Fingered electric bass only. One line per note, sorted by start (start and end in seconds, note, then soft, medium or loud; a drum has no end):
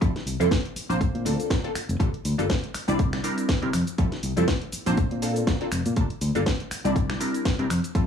0.02 0.10 F2 loud
0.26 0.35 C2 medium
0.40 0.47 F2 medium
0.76 muted fingered electric bass stroke soft
0.90 1.04 A#1 loud
1.15 1.25 A#2 medium
1.25 1.34 D2 loud
1.75 muted fingered electric bass stroke soft
1.89 1.96 F1 medium
2.00 2.09 G1 loud
2.25 2.34 D2 medium
2.39 2.46 G1 medium
2.75 muted fingered electric bass stroke soft
2.88 3.18 C2 loud
3.63 3.70 C3 medium
3.74 3.82 F2 loud
3.99 4.07 F2 loud
4.23 4.32 C2 medium
4.37 4.44 F2 medium
4.73 muted fingered electric bass stroke soft
4.87 5.01 A#1 loud
5.12 5.41 A#2 loud
5.72 5.81 F1 loud
5.86 5.93 A#2 medium
5.97 6.05 G1 loud
6.21 6.30 D2 medium
6.35 6.42 G1 medium
6.71 muted fingered electric bass stroke soft
6.85 7.14 C2 loud
7.59 7.66 C3 medium
7.70 7.79 F2 loud
7.95 8.04 F2 loud